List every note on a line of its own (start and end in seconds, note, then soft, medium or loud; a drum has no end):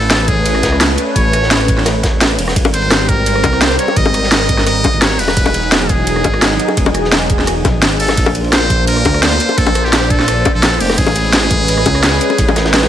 0.00 0.62 A1 loud
0.00 2.54 A3 medium
0.00 2.54 C#4 medium
0.00 0.30 A4 loud
0.00 2.53 B4 medium
0.00 ride soft
0.10 snare loud
0.10 closed hi-hat medium
0.10 ride medium
0.28 0.89 G#4 loud
0.28 kick loud
0.28 closed hi-hat medium
0.28 ride medium
0.46 closed hi-hat loud
0.46 ride medium
0.55 cross-stick soft
0.63 0.97 C#2 loud
0.63 kick medium
0.63 snare loud
0.63 closed hi-hat medium
0.63 ride medium
0.72 cross-stick soft
0.81 snare loud
0.81 closed hi-hat loud
0.81 ride medium
0.97 closed hi-hat medium
0.97 ride medium
1.16 2.02 A1 loud
1.16 1.82 C#5 loud
1.16 kick loud
1.16 closed hi-hat loud
1.16 ride medium
1.33 cross-stick soft
1.33 closed hi-hat medium
1.33 ride medium
1.42 snare soft
1.51 snare loud
1.51 closed hi-hat loud
1.51 ride medium
1.68 kick loud
1.68 closed hi-hat medium
1.68 ride medium
1.77 snare soft
1.86 cross-stick soft
1.86 snare loud
1.86 closed hi-hat loud
1.86 ride medium
2.03 kick loud
2.03 snare loud
2.03 closed hi-hat medium
2.03 ride medium
2.12 2.37 A1 medium
2.20 snare loud
2.20 closed hi-hat loud
2.20 ride medium
2.38 2.54 E1 medium
2.38 closed hi-hat medium
2.38 open hi-hat medium
2.48 cross-stick medium
2.48 snare medium
2.56 3.43 G#1 loud
2.56 5.17 G3 medium
2.56 5.17 C4 medium
2.56 5.17 A#4 medium
2.56 kick loud
2.56 closed hi-hat loud
2.56 ride medium
2.65 ride soft
2.65 high bongo loud
2.74 3.11 C5 loud
2.74 closed hi-hat medium
2.74 ride medium
2.82 ride soft
2.90 snare loud
2.90 closed hi-hat medium
2.90 ride medium
2.90 ride loud
3.08 3.64 A#4 loud
3.08 kick loud
3.08 closed hi-hat medium
3.08 ride medium
3.26 closed hi-hat loud
3.26 ride medium
3.35 cross-stick soft
3.44 3.78 C2 medium
3.44 kick medium
3.44 closed hi-hat medium
3.44 ride medium
3.44 high bongo medium
3.53 cross-stick soft
3.53 ride soft
3.61 3.79 C5 loud
3.61 snare loud
3.61 closed hi-hat medium
3.61 ride medium
3.70 snare soft
3.79 3.98 C#5 loud
3.79 closed hi-hat medium
3.79 ride medium
3.88 high bongo medium
3.96 4.83 G#1 loud
3.96 4.66 D#5 loud
3.96 kick loud
3.96 closed hi-hat loud
3.96 ride medium
4.06 high bongo medium
4.14 cross-stick soft
4.14 closed hi-hat medium
4.14 ride medium
4.23 snare soft
4.32 snare loud
4.32 closed hi-hat medium
4.32 ride medium
4.49 kick loud
4.49 closed hi-hat medium
4.49 ride medium
4.58 snare soft
4.67 5.03 D#5 loud
4.67 cross-stick medium
4.67 closed hi-hat medium
4.67 ride medium
4.67 ride loud
4.84 kick loud
4.84 closed hi-hat medium
4.84 ride medium
4.84 high bongo medium
4.93 5.18 G#1 loud
4.93 ride soft
5.01 5.21 C#5 loud
5.01 snare loud
5.01 closed hi-hat medium
5.01 ride medium
5.19 5.35 E1 medium
5.19 8.15 F#3 medium
5.19 8.15 D#4 medium
5.19 8.15 G#4 medium
5.19 5.91 B4 loud
5.19 closed hi-hat medium
5.19 open hi-hat medium
5.28 cross-stick soft
5.28 snare medium
5.28 high bongo medium
5.37 6.23 E1 loud
5.37 kick loud
5.37 closed hi-hat medium
5.37 ride medium
5.46 ride soft
5.46 high bongo loud
5.54 closed hi-hat medium
5.54 ride medium
5.63 ride soft
5.72 snare loud
5.72 closed hi-hat medium
5.72 ride medium
5.89 6.95 G#4 medium
5.89 kick loud
5.89 closed hi-hat medium
5.89 ride medium
6.07 closed hi-hat medium
6.07 ride medium
6.16 cross-stick soft
6.24 6.58 G#1 loud
6.24 kick medium
6.24 closed hi-hat medium
6.24 ride medium
6.24 high bongo loud
6.34 cross-stick soft
6.34 ride soft
6.42 snare loud
6.42 closed hi-hat medium
6.42 ride medium
6.51 snare soft
6.59 closed hi-hat medium
6.59 ride medium
6.68 high bongo medium
6.77 7.64 E1 loud
6.77 kick loud
6.77 closed hi-hat medium
6.77 ride medium
6.86 high bongo loud
6.94 cross-stick soft
6.94 closed hi-hat medium
6.94 ride medium
7.04 snare soft
7.12 snare loud
7.12 closed hi-hat medium
7.12 ride medium
7.30 kick loud
7.30 closed hi-hat medium
7.30 ride medium
7.39 snare soft
7.47 cross-stick soft
7.47 closed hi-hat medium
7.47 ride medium
7.65 7.76 B1 loud
7.65 kick loud
7.65 snare soft
7.65 closed hi-hat medium
7.65 ride medium
7.65 high bongo medium
7.74 8.16 G#1 medium
7.82 snare loud
7.82 closed hi-hat medium
7.82 ride medium
7.91 ride soft
7.99 8.33 A4 loud
7.99 closed hi-hat medium
7.99 open hi-hat medium
8.08 cross-stick soft
8.08 snare medium
8.08 high bongo medium
8.17 9.04 A#1 loud
8.17 10.95 A#3 medium
8.17 10.95 D4 medium
8.17 10.96 C5 medium
8.17 kick loud
8.17 closed hi-hat medium
8.17 ride medium
8.26 ride soft
8.26 high bongo loud
8.35 closed hi-hat medium
8.35 ride medium
8.44 ride soft
8.52 8.85 C5 loud
8.52 snare loud
8.52 closed hi-hat medium
8.52 ride medium
8.70 kick loud
8.70 closed hi-hat medium
8.70 ride medium
8.87 9.21 A#4 loud
8.87 closed hi-hat loud
8.87 ride medium
8.97 cross-stick soft
9.05 9.39 D2 medium
9.05 kick medium
9.05 closed hi-hat medium
9.05 ride medium
9.05 high bongo loud
9.14 cross-stick soft
9.14 ride soft
9.23 9.59 C5 loud
9.23 snare loud
9.23 closed hi-hat medium
9.23 ride medium
9.31 snare soft
9.40 closed hi-hat medium
9.40 ride medium
9.49 high bongo medium
9.58 10.44 A#1 loud
9.58 9.86 A4 loud
9.58 kick loud
9.58 closed hi-hat medium
9.58 ride medium
9.67 high bongo medium
9.75 cross-stick soft
9.75 closed hi-hat medium
9.75 ride medium
9.84 10.12 G4 loud
9.84 snare soft
9.93 snare loud
9.93 closed hi-hat medium
9.93 ride medium
10.10 10.54 A4 loud
10.10 kick loud
10.10 closed hi-hat medium
10.10 ride medium
10.19 snare soft
10.28 cross-stick soft
10.28 closed hi-hat loud
10.28 ride medium
10.45 kick loud
10.45 closed hi-hat medium
10.45 ride medium
10.45 high bongo medium
10.55 10.79 A#1 medium
10.55 10.82 A4 medium
10.55 ride soft
10.62 snare loud
10.62 closed hi-hat medium
10.62 ride medium
10.80 10.97 F1 medium
10.80 11.00 G4 medium
10.80 closed hi-hat medium
10.80 open hi-hat medium
10.90 cross-stick soft
10.90 snare medium
10.90 high bongo medium
10.98 11.85 A1 loud
10.98 12.88 G#3 medium
10.98 12.88 C#4 medium
10.98 12.88 G#4 loud
10.98 12.88 B4 medium
10.98 kick loud
10.98 closed hi-hat loud
10.98 ride medium
11.07 ride soft
11.07 high bongo medium
11.16 closed hi-hat medium
11.16 ride medium
11.25 ride soft
11.33 snare loud
11.33 closed hi-hat medium
11.33 ride medium
11.50 kick loud
11.50 closed hi-hat medium
11.50 ride medium
11.68 closed hi-hat loud
11.68 ride medium
11.77 cross-stick soft
11.86 12.20 C#2 medium
11.86 kick medium
11.86 closed hi-hat medium
11.86 ride medium
11.86 high bongo medium
11.95 cross-stick soft
11.95 ride soft
12.03 snare loud
12.03 closed hi-hat loud
12.03 ride medium
12.13 snare soft
12.21 closed hi-hat medium
12.21 ride medium
12.30 high bongo medium
12.38 12.88 A1 loud
12.38 kick loud
12.38 closed hi-hat loud
12.38 ride medium
12.49 high bongo loud
12.56 cross-stick soft
12.56 snare loud
12.56 closed hi-hat medium
12.56 ride medium
12.65 snare loud
12.65 ride medium
12.74 snare loud
12.74 closed hi-hat medium
12.74 ride medium
12.82 snare loud
12.82 ride medium